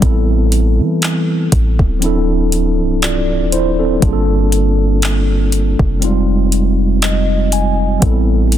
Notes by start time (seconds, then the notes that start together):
0.00 A1 G3 B3 C4, kick, closed hi-hat
0.04 E4 A4
0.52 closed hi-hat
0.80 E3
1.02 clap, closed hi-hat
1.52 A1, kick, closed hi-hat
1.79 D1, kick
1.99 F3 C4 D4, closed hi-hat
2.04 E4 A4
2.52 closed hi-hat
2.80 C1
3.02 F4 D5, clap, closed hi-hat
3.41 D1
3.52 E4 C5, closed hi-hat
3.79 C4 A4
4.00 G1 G3 A#3 D4, kick, closed hi-hat
4.05 F4 G#4
4.13 A4
4.52 closed hi-hat
5.02 clap, closed hi-hat
5.52 closed hi-hat
5.79 F1, kick
5.99 G3 C4 D#4, closed hi-hat
6.04 G3 G#3 F4
6.52 closed hi-hat
7.02 D#5, clap, closed hi-hat
7.52 G#5, closed hi-hat
7.99 A1 G3 B3 C4, kick, closed hi-hat
8.04 E4 A4
8.52 closed hi-hat